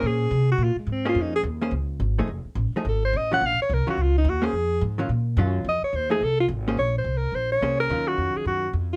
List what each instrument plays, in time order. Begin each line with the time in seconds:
Already playing: hollow-body jazz guitar A#3 C#4 G#4 C5
0.02 upright bass A#2
0.07 alto saxophone G#4
0.31 upright bass C3
0.51 alto saxophone F#4
0.58 upright bass A#2
0.64 alto saxophone F4
0.76 alto saxophone G#3, muted upright bass stroke
0.87 upright bass G#2
0.92 alto saxophone C4
1.05 hollow-body jazz guitar A#3 C#4 G#4 C5, alto saxophone F4
1.15 upright bass F2
1.21 alto saxophone D#4
1.36 alto saxophone G#4
1.43 upright bass D#2
1.61 hollow-body jazz guitar A#3 C#4 G#4 C5
1.71 upright bass C#2
2.00 upright bass G#1
2.18 hollow-body jazz guitar F3 A3 D#4 G#4
2.27 upright bass F1
2.44 muted upright bass stroke
2.55 upright bass A1
2.73 hollow-body jazz guitar F3, muted upright bass stroke
2.77 hollow-body jazz guitar A3 D#4 G#4
2.85 upright bass G#1, alto saxophone A4
3.05 alto saxophone C5
3.13 upright bass A1, alto saxophone D#5
3.32 hollow-body jazz guitar D#3 F#3 C#4 F4, alto saxophone F#5
3.41 upright bass A#1
3.46 alto saxophone F5
3.59 alto saxophone C#5, muted upright bass stroke
3.70 upright bass C2
3.74 alto saxophone A#4
3.87 hollow-body jazz guitar D#3 F#3 C#4 F4, alto saxophone F#4, muted upright bass stroke
3.98 upright bass C#2
4.02 alto saxophone F4
4.18 alto saxophone D#4
4.24 upright bass D#2
4.30 alto saxophone F#4
4.42 hollow-body jazz guitar A#3 C#4 G#4 C5, alto saxophone G#4
4.53 upright bass F2
4.81 upright bass G#2
4.98 hollow-body jazz guitar D#3 F#3 C#4 F4
5.09 upright bass A#2
5.37 upright bass F#2, hollow-body jazz guitar D#3 F#3 C#4 F4
5.64 upright bass F2
5.69 alto saxophone D#5
5.82 alto saxophone C#5, muted upright bass stroke
5.93 upright bass D#2, alto saxophone C5
6.10 hollow-body jazz guitar F3 A3 D#4 G#4, alto saxophone G#4
6.21 upright bass C2, alto saxophone A4
6.40 alto saxophone F4
6.48 upright bass G#1
6.68 hollow-body jazz guitar A#3 C#4 G#4 C5
6.77 upright bass A#1, alto saxophone C#5
6.98 alto saxophone C5
7.04 upright bass C2
7.17 alto saxophone A#4
7.32 upright bass A#1, alto saxophone C5
7.52 alto saxophone C#5
7.61 upright bass C2, hollow-body jazz guitar A#3 C#4 G#4 C5
7.80 alto saxophone A#4
7.89 upright bass D#2, hollow-body jazz guitar D#3 F#3 C#4 F4
8.08 alto saxophone F#4
8.18 upright bass F2
8.35 alto saxophone G#4, muted upright bass stroke
8.45 upright bass F#2, alto saxophone F#4
8.73 upright bass F2
8.93 alto saxophone F4